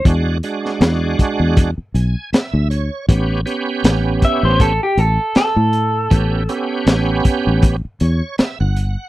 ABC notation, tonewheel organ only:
X:1
M:4/4
L:1/16
Q:"Swing 16ths" 1/4=79
K:Amix
V:1 name="Tonewheel organ"
[^G,DF]2 [G,DF]6 z2 ^g2 e2 c2 | [B,CG]2 [B,CG]6 z8 | [B,CG]2 [B,CG]6 z2 c2 e f3 |]